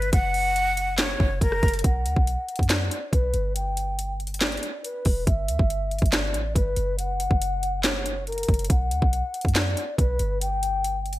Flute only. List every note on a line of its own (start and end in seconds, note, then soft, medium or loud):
0.00 0.10 B4 loud
0.13 0.95 F#5 loud
0.99 1.39 C#5 medium
1.41 1.82 A#4 loud
1.84 2.66 F#5 medium
2.70 3.10 D5 medium
3.13 3.53 B4 loud
3.56 4.13 G5 loud
4.41 4.82 D5 medium
4.84 5.24 B4 medium
5.27 6.09 E5 loud
6.13 6.53 D5 medium
6.56 6.96 B4 loud
6.98 7.80 F#5 loud
7.84 8.24 C#5 medium
8.27 8.67 A#4 loud
8.70 9.52 F#5 loud
9.56 9.96 D5 medium
9.98 10.39 B4 loud
10.41 11.01 G5 loud